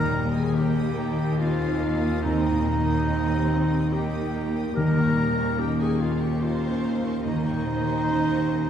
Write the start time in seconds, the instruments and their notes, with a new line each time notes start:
Already playing: felt piano D#2 A#2, cello section D#2, double bass section D#2, timpani D#3, harp D#3 A#3 A#4, viola section G3, clarinet A#4, violin section G5 A#5 D#6
0.10 harp D#4, violin section D#5 A#5
0.25 felt piano A#3
0.32 harp G4, clarinet G#4, violin section G5 G#5 D#6
0.54 viola section A#3, felt piano D#4, clarinet G4, harp A#4, violin section D#5 G5 A#5
0.75 harp D#5, violin section G5 D#6
0.83 felt piano G4
0.96 violin section D#5 A#5, harp G5
1.11 felt piano D#4
1.16 violin section G5 D#6, harp A#5
1.38 viola section C4, clarinet F4, felt piano G4, violin section D#5 F5 A#5, harp G5
1.59 harp D#5, violin section G5 D#6
1.67 felt piano D#4
1.79 viola section A#3, harp A#4, violin section D#5 A#5
1.96 felt piano A#3
2.00 harp G4, violin section G5 D#6
2.22 felt piano D#2, harp D#3, viola section C4, clarinet D#4, violin section D#5 A#5
2.44 harp A#3, violin section G5 D#6
2.52 felt piano A#2
2.64 viola section A#3, harp D#4, violin section D#5 A#5
2.79 felt piano A#3
2.85 harp G4, violin section G5 D#6
3.05 viola section C4, felt piano D#4, violin section D#5 A#5
3.26 harp D#5, violin section G5 D#6
3.35 felt piano G4
3.47 violin section D#5 A#5, harp G5
3.64 felt piano D#4
3.69 violin section G5 D#6, harp A#5
3.90 viola section A#3, felt piano G4, clarinet G4, violin section D#5 G5 A#5, harp G5
4.12 harp D#5, violin section G5 D#6
4.20 felt piano D#4
4.33 harp A#4, violin section D#5 A#5
4.48 felt piano A#3
4.55 harp G4, violin section G5 D#6
4.74 cello section D#2, felt piano D#2, double bass section D#2, harp D#3, timpani D#3, viola section G3, clarinet A#4, violin section D#5 A#5
4.97 harp A#3, violin section G5 C#6
5.05 felt piano A#2
5.18 harp C#4, violin section D#5 A#5
5.31 felt piano A#3
5.38 harp G4, violin section G5 C#6
5.58 viola section A#3, felt piano C#4, clarinet G4, harp A#4, violin section D#5 G5 A#5
5.80 clarinet G#4, harp C#5, violin section G5 G#5 C#6
5.87 felt piano G4
6.00 clarinet F4, violin section D#5 F5 A#5, harp G5
6.14 felt piano C#4
6.20 clarinet G4, violin section G5 C#6, harp A#5
6.40 clarinet F4, felt piano G4, viola section C5, violin section D#5 F5 A#5, harp G5
6.63 harp C#5, violin section G5 C#6
6.70 felt piano C#4
6.83 harp A#4, violin section D#5 A#5
6.97 felt piano A#3
7.03 harp G4, violin section G5 C#6
7.23 felt piano D#2, harp D#3, viola section A#3, clarinet D#4, violin section D#5 A#5
7.44 harp A#3, violin section G5 C#6
7.52 felt piano A#2
7.64 harp C#4, viola section C5, violin section D#5 A#5
7.80 felt piano A#3
7.84 harp G4, violin section G5 C#6
8.05 felt piano C#4, harp A#4, violin section D#5 A#5
8.27 violin section G5 C#6
8.36 felt piano G4
8.49 violin section D#5 A#5, harp G5
8.65 felt piano C#4